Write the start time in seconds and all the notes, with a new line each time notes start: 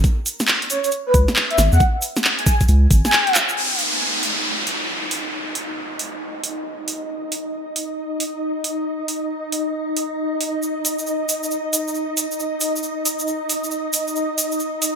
0.04 kick, closed hi-hat, shaker
0.26 open hi-hat, shaker
0.40 snare, closed hi-hat, shaker
0.47 clap, shaker
0.62 closed hi-hat
0.70 C#5, open hi-hat, shaker
0.84 C#5, closed hi-hat, shaker
0.91 closed hi-hat, shaker
1.06 B4
1.14 C#2, kick, open hi-hat, shaker
1.28 snare, closed hi-hat, shaker
1.36 clap, shaker
1.50 E5, closed hi-hat
1.58 G#1, snare, open hi-hat, shaker
1.72 E2 F#5, shaker
1.80 kick, closed hi-hat, shaker
2.02 open hi-hat, shaker
2.16 snare, closed hi-hat, shaker
2.24 clap, shaker
2.38 G#5, closed hi-hat
2.46 G#5, kick, open hi-hat, shaker
2.61 kick, closed hi-hat, shaker
2.68 C#2, closed hi-hat, shaker
2.91 G#1, kick, open hi-hat, shaker
3.05 G#5, snare, closed hi-hat, shaker
3.12 clap, shaker
3.27 closed hi-hat
3.35 clap, open hi-hat, shaker
3.49 closed hi-hat, shaker
3.56 D#4 D#5, downlifter
3.79 open hi-hat
4.23 open hi-hat
4.67 open hi-hat
5.11 open hi-hat
5.55 open hi-hat
5.99 open hi-hat
6.44 open hi-hat
6.88 open hi-hat
7.32 open hi-hat
7.76 open hi-hat
8.20 open hi-hat
8.64 open hi-hat
9.08 open hi-hat
9.52 open hi-hat
9.97 open hi-hat
10.41 open hi-hat
10.63 shaker
10.85 open hi-hat, shaker
10.99 shaker
11.07 shaker
11.29 open hi-hat, shaker
11.43 shaker
11.51 shaker
11.73 open hi-hat, shaker
11.88 shaker
11.95 shaker
12.17 open hi-hat, shaker
12.31 shaker
12.40 shaker
12.60 open hi-hat, shaker
12.76 shaker
12.83 shaker
13.05 open hi-hat, shaker
13.19 shaker
13.27 shaker
13.49 open hi-hat, shaker
13.64 shaker
13.71 shaker
13.93 open hi-hat, shaker
14.08 shaker
14.16 shaker
14.38 open hi-hat, shaker
14.52 shaker
14.60 shaker
14.82 open hi-hat, shaker